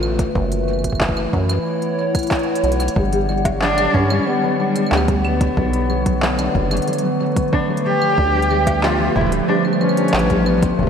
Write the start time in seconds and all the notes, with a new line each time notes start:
Already playing: A1 D3 A3 B3 F4 B4
0.03 claves
0.19 kick, closed hi-hat
0.35 F#1 E3, kick
0.52 closed hi-hat
0.68 E4, claves
0.73 claves
0.79 claves
0.84 kick, closed hi-hat, claves
0.90 kick, claves
0.95 claves
1.01 kick, clap
1.09 kick
1.17 claves
1.33 F#2, kick
1.44 C#5
1.49 F#5, closed hi-hat, claves
1.82 closed hi-hat
2.15 kick, closed hi-hat, claves
2.17 closed hi-hat, claves
2.19 closed hi-hat, claves
2.27 closed hi-hat, claves
2.31 kick, clap, closed hi-hat
2.35 closed hi-hat
2.39 closed hi-hat
2.43 closed hi-hat
2.56 closed hi-hat
2.64 B1, closed hi-hat
2.72 closed hi-hat
2.80 closed hi-hat, claves
2.88 closed hi-hat
2.96 G1 D3 G3, kick
3.13 G3, closed hi-hat
3.29 G3, claves
3.45 F#3, kick, closed hi-hat, cowbell
3.61 F#3 D4, clap
3.78 G3, closed hi-hat, claves
3.94 G2 B3 C#4, kick
4.10 G3 B3 B4, claves
4.27 G3 B3
4.43 F#3
4.59 G3 D4
4.76 G3, closed hi-hat, claves
4.87 claves
4.92 D2 G3, clap
4.97 claves
5.08 G3, kick, closed hi-hat
5.25 F#3 B3, claves
5.41 F#3, kick, closed hi-hat
5.57 B1 F#3, kick
5.73 B3, closed hi-hat
5.90 F#3, claves
5.96 A3
6.06 F#3, kick, closed hi-hat
6.22 F#3, clap
6.39 D4, closed hi-hat, claves
6.55 F#1 F#3, kick
6.71 F#3, closed hi-hat, claves
6.77 closed hi-hat
6.82 closed hi-hat
6.87 F#3, closed hi-hat
6.93 closed hi-hat
6.98 closed hi-hat
7.04 F#3
7.20 F#3
7.36 F#3, kick, closed hi-hat
7.53 B3 D4, kick
7.69 F#3
7.77 closed hi-hat
7.85 F#3 G4
8.02 F#3, claves
8.18 D2 D4, kick
8.34 G3
8.42 closed hi-hat
8.51 G3, claves
8.67 G3, kick, closed hi-hat, cowbell
8.82 F3 F4, clap
8.99 F3
9.16 D1 G3 E4, kick
9.21 kick
9.27 kick
9.32 B3, closed hi-hat
9.48 G3 D4
9.65 G3, claves
9.73 claves
9.81 F3 C#4, claves
9.89 claves
9.97 D4, closed hi-hat
10.08 closed hi-hat
10.14 A1 G3, clap
10.19 closed hi-hat
10.30 G3, kick, closed hi-hat
10.46 G3 B3, claves
10.63 F3, kick, closed hi-hat
10.79 F#1 E3 F#3 A3, kick
10.83 kick